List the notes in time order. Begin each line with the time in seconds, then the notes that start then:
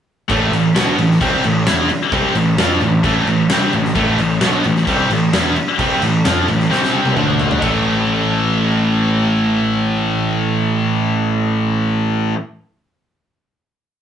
0.28 A1 A2 E3 A3, kick, crash
0.51 A1 A2 E3, crash
0.75 B1 B2 F#3 B3, snare, crash
0.97 A1 A2 E3, crash
1.11 snare
1.20 C2 C3 G3 C4, kick, crash
1.44 A1 A2 E3, crash
1.66 E2 E3 B3 E4, snare, crash
1.89 muted picked electric bass stroke, muted distorted electric guitar stroke, crash
2.12 C2 C3 G3 C4, kick, crash
2.34 A1 A2 E3, crash
2.58 F2 F3 C4 F4, snare, crash
2.80 A1 A2 E3, crash
3.03 A1 A2 E3 A3, kick, crash
3.26 A1 A2 E3, crash
3.49 C2 C3 G3 C4, snare, crash
3.72 A1 A2 E3, crash
3.85 snare
3.95 A1 A2 E3 A3, kick, crash
4.18 A1 A2 E3, crash
4.41 B1 B2 F#3 B3, snare, crash
4.64 A1 A2 E3, crash
4.76 snare
4.87 C2 C3 G3 C4, kick, crash
5.10 A1 A2 E3, crash
5.33 E2 E3 B3 E4, snare, crash
5.56 muted distorted electric guitar stroke, muted picked electric bass stroke, crash
5.78 C2 C3 G3 C4, kick, crash
6.02 A1 A2 E3, crash
6.25 F2 F3 C4 F4, snare, crash
6.48 A1 A2 E3, crash
6.60 snare
6.70 C2 C3 G3 C4, snare
6.83 snare
7.05 high tom
7.16 D2 D3 A3 D4, mid tom
7.40 floor tom
7.51 floor tom
7.60 A1 A2 E3 A3, kick, crash